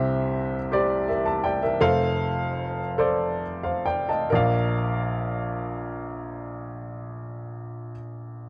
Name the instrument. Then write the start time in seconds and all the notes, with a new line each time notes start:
upright piano
Already playing: C2 C3 G4 C5 E5
0.72 G4 C5 D5
1.08 A#4 E5
1.26 E5 A5
1.44 D5 G5
1.62 A#4 E5
1.81 F1 F2 A4 C5 F5
2.98 A4 C5 D5
3.63 C5 F5
3.86 D5 G5
4.09 D#5 A5
4.30 A#1 A#4 D5
4.35 F5